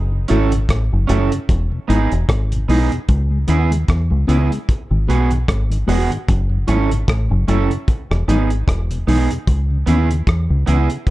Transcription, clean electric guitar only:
0.28 0.50 C#4 loud
0.28 0.51 E4 medium
0.28 0.51 A4 loud
1.07 1.29 C#4 medium
1.07 1.30 E4 medium
1.07 1.31 A4 loud
1.88 2.10 B3 medium
1.88 2.10 D#4 medium
1.88 2.11 G#4 medium
2.68 2.90 B3 medium
2.68 2.90 D#4 medium
2.68 2.91 G#4 medium
3.48 3.70 B3 medium
3.48 3.70 E4 medium
3.48 3.71 G#4 medium
4.28 4.50 B3 medium
4.28 4.50 E4 medium
4.28 4.51 G#4 medium
5.09 5.30 B3 medium
5.09 5.30 F#4 medium
5.09 5.30 G#4 medium
5.88 6.09 B3 medium
5.88 6.10 F#4 medium
5.88 6.10 G#4 medium
6.68 6.89 C#4 medium
6.68 6.90 E4 loud
6.68 6.90 A4 loud
7.48 7.69 C#4 medium
7.48 7.70 E4 medium
7.48 7.70 A4 medium
8.28 8.49 B3 medium
8.28 8.50 D#4 medium
8.28 8.50 G#4 medium
9.07 9.29 B3 medium
9.07 9.29 D#4 medium
9.07 9.29 G#4 medium
9.86 10.08 B3 medium
9.86 10.09 E4 loud
9.86 10.09 G#4 loud
10.66 10.88 B3 medium
10.66 10.88 E4 loud
10.66 10.89 G#4 loud

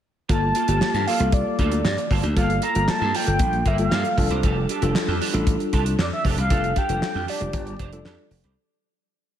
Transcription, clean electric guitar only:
0.29 0.48 A#3 medium
0.29 0.42 F4 medium
0.29 0.41 A4 medium
0.42 muted clean electric guitar stroke soft
0.55 0.68 A#3 medium
0.55 0.68 F4 medium
0.55 0.67 A4 medium
0.68 0.80 A#3 medium
0.68 0.81 F4 medium
0.68 0.81 A4 medium
0.81 muted clean electric guitar stroke soft
0.94 1.06 A#3 medium
0.94 1.07 F4 medium
0.94 1.08 A4 medium
1.07 1.26 A#3 medium
1.07 1.20 F4 medium
1.07 1.19 A4 medium
1.21 muted clean electric guitar stroke soft
1.47 muted clean electric guitar stroke soft
1.59 1.78 A#3 medium
1.59 1.72 F4 loud
1.59 1.71 A4 loud
1.72 muted clean electric guitar stroke medium
1.98 muted clean electric guitar stroke medium
2.11 2.29 A#3 medium
2.11 2.23 F4 medium
2.11 2.23 A4 medium
2.24 muted clean electric guitar stroke soft
2.36 2.55 A#3 medium
2.36 2.49 F4 medium
2.36 2.48 A4 medium
2.50 muted clean electric guitar stroke soft
2.62 2.75 A#3 medium
2.62 2.75 F4 medium
2.62 2.75 A4 medium
2.75 2.87 A#3 soft
2.75 2.87 F4 medium
2.75 2.88 A#4 medium
2.88 muted clean electric guitar stroke soft
3.01 3.12 A#3 medium
3.01 3.13 F4 medium
3.01 3.14 A4 medium
3.14 3.33 A#3 medium
3.14 3.27 F4 medium
3.14 3.26 A4 medium
3.27 muted clean electric guitar stroke soft
3.53 muted clean electric guitar stroke soft
3.65 3.84 A#3 medium
3.65 3.78 F4 medium
3.65 3.78 A#4 loud
3.79 muted clean electric guitar stroke soft
3.91 4.10 A#3 medium
3.91 4.04 F4 medium
3.91 4.03 A4 loud
4.05 muted clean electric guitar stroke soft
4.18 muted clean electric guitar stroke soft
4.30 4.43 D4 medium
4.30 4.43 G4 medium
4.30 4.45 C5 medium
4.44 4.62 D4 medium
4.44 4.57 G4 medium
4.44 4.56 A4 loud
4.57 muted clean electric guitar stroke soft
4.70 4.82 D4 medium
4.70 4.82 G4 medium
4.70 4.81 A4 medium
4.82 4.94 D4 medium
4.82 4.94 G4 medium
4.82 4.95 A4 medium
4.95 muted clean electric guitar stroke soft
5.08 5.20 D4 medium
5.08 5.20 G4 medium
5.08 5.21 A4 medium
5.21 5.40 D4 medium
5.21 5.34 G4 medium
5.21 5.33 A4 medium
5.34 muted clean electric guitar stroke soft
5.60 muted clean electric guitar stroke soft
5.73 5.92 D4 medium
5.73 5.86 G4 medium
5.73 5.85 A4 medium
5.86 muted clean electric guitar stroke soft
6.12 muted clean electric guitar stroke soft
6.24 6.43 D4 medium
6.24 6.37 G4 medium
6.24 6.36 A4 loud
6.38 muted clean electric guitar stroke soft
6.50 6.69 D4 medium
6.50 6.63 G4 medium
6.50 6.62 A4 medium
6.63 muted clean electric guitar stroke medium
6.76 6.89 D4 medium
6.76 6.88 G4 medium
6.76 6.89 A4 medium
6.89 7.01 D4 medium
6.89 7.01 G4 medium
6.89 7.02 C5 medium
7.02 muted clean electric guitar stroke soft
7.14 7.26 D4 soft
7.14 7.27 G4 medium
7.14 7.27 A4 medium
7.28 7.46 D4 medium
7.28 7.41 G4 medium
7.28 7.40 A4 medium
7.41 muted clean electric guitar stroke soft
7.66 muted clean electric guitar stroke soft
7.79 7.98 D4 medium
7.79 7.92 G4 medium
7.79 7.92 C5 loud
7.92 muted clean electric guitar stroke soft
8.05 8.24 D4 medium
8.05 8.18 G4 medium
8.05 8.17 A4 medium
8.19 muted clean electric guitar stroke soft
8.31 muted clean electric guitar stroke soft
8.44 8.59 D4 medium
8.44 8.59 G4 medium
8.44 8.59 C5 medium

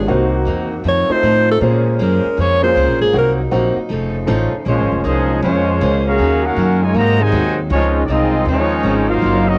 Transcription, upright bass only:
0.08 0.46 C2 medium
0.47 0.84 E2 medium
0.84 1.08 F2 medium
1.09 muted upright bass stroke soft
1.23 1.60 A2 loud
1.61 1.98 A#2 loud
1.99 2.23 F#2 medium
2.25 muted upright bass stroke soft
2.38 2.75 F2 medium
2.76 2.88 C#2 loud
2.88 3.00 A#1 medium
3.01 3.13 G#1 medium
3.13 3.51 C2 medium
3.52 3.75 A#1 medium
3.76 muted upright bass stroke soft
3.90 4.27 F1 medium
4.28 4.51 A1 loud
4.53 muted upright bass stroke soft
4.66 4.79 A#1 loud
4.79 4.91 G#1 medium
4.92 5.04 F1 medium
5.05 5.41 C2 medium
5.42 5.79 F2 loud
5.81 6.18 C#2 loud
6.19 6.56 D#2 medium
6.56 6.93 F#2 medium
6.94 7.31 G#2 medium
7.32 7.69 D#2 loud
7.70 8.07 C#2 loud
8.08 8.45 C2 medium
8.45 8.82 D#2 medium
8.83 9.20 G#1 loud
9.22 9.58 F#1 medium

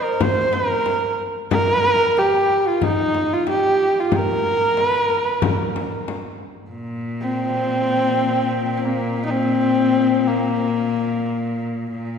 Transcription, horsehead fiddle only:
0.03 0.23 A#4 medium
0.22 0.55 C5 medium
0.53 1.18 A#4 medium
1.52 2.20 A#4 loud
2.19 2.69 G4 medium
2.67 2.85 F4 medium
2.84 3.35 D#4 loud
3.33 3.48 F4 medium
3.50 4.02 G4 medium
4.00 4.18 F4 medium
4.16 4.84 A#4 medium
4.84 5.03 B4 medium
5.03 5.23 A#4 medium
5.23 5.41 B4 medium
5.41 6.09 A#4 medium
7.22 8.77 C4 loud
8.77 8.87 C4 medium
8.85 9.24 A#3 medium
9.25 9.32 D#4 medium
9.31 10.29 C4 medium
10.28 11.66 A#3 medium

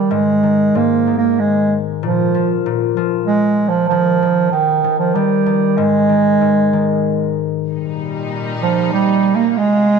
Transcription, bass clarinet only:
0.00 0.13 G3 medium
0.11 0.78 G#3 medium
0.76 1.17 A#3 medium
1.18 1.41 A#3 medium
1.39 1.75 G#3 medium
2.02 2.61 F3 medium
3.26 3.70 G#3 medium
3.69 3.88 F3 medium
3.88 4.47 F3 medium
4.51 4.95 D#3 medium
4.98 5.16 F3 medium
5.15 5.79 G3 medium
5.77 7.38 G#3 medium
8.63 8.92 F3 medium
8.93 9.37 G3 medium
9.35 9.48 A#3 medium
9.48 9.59 A#3 medium
9.57 9.99 G#3 medium

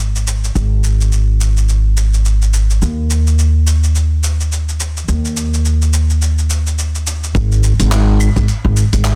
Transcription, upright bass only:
0.00 0.53 G#1 medium
0.55 2.80 G#1 medium
2.82 5.06 D#2 medium
5.08 7.32 D#2 medium
7.35 7.70 G#1 loud
7.79 8.27 G#1 medium
8.36 8.44 G#1 medium
8.65 8.81 G#1 loud
8.93 9.15 G#1 medium

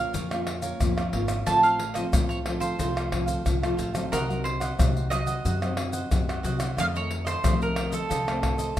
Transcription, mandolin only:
0.00 1.09 F5 medium
1.46 1.63 A5 loud
1.63 1.94 F5 medium
1.94 2.03 D#5 medium
2.29 2.38 C#5 medium
2.60 3.74 C5 medium
4.12 4.44 A#4 medium
4.44 5.07 C5 medium
5.10 6.40 D#5 medium
6.80 6.85 F5 loud
6.96 7.26 C#5 medium
7.27 7.62 C5 medium
7.63 7.93 A#4 medium
7.94 8.79 A4 medium

